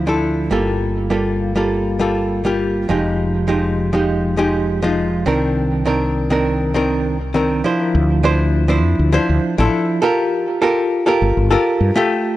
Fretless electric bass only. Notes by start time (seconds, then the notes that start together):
Already playing: D2
0.51 G1
2.90 F1
5.27 C2
7.95 D2
8.84 F2
8.99 D2
9.29 D2
9.59 A1
11.22 G1
11.37 G1
11.80 G2